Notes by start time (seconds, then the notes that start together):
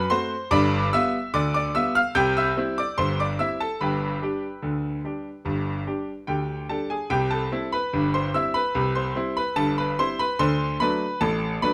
Already playing: B4 B5
0.10 A3 C4 F#4 C5 C6
0.51 G1 G2 D5 B5 D6
0.93 G3 B3 F4 E5 E6
1.34 D2 D3 D5 D6
1.54 D5 D6
1.74 G3 B3 F4 E5 E6
1.95 F5 F6
2.15 C2 C3 G5 G6
2.37 E5 E6
2.57 G3 C4 E4
2.78 D5 D6
2.98 G1 G2 C5 C6
3.20 D5 D6
3.39 G3 C4 E4 E5 E6
3.60 A4 A5
3.81 G1 G2 B4 G5 B5
4.22 G3 D4 G4
4.62 D2 D3
5.04 G3 D4 G4
5.45 G1 G2
5.87 G3 D4 G4
6.27 D2 D3 G4 G5
6.69 G3 D4 G4 A4 A5
6.90 G#4 G#5
7.10 C2 C3 G4 G5
7.31 A4 A5
7.52 G3 C4 E4
7.72 B4 B5
7.93 G1 G2
8.14 C5 C6
8.34 G3 C4 E4 E5 E6
8.54 B4 B5
8.75 C2 C3
8.95 C5 C6
9.15 G3 C4 E4
9.37 B4 B5
9.56 G1 G2 A4 A5
9.78 B4 B5
9.99 G3 C4 E4 C5 C6
10.19 B4 B5
10.39 D2 D3 C5 C6
10.80 F#3 A3 D4 B4 B5
11.21 A1 A2 A4 A5
11.62 F#3 A3 D4 B4 B5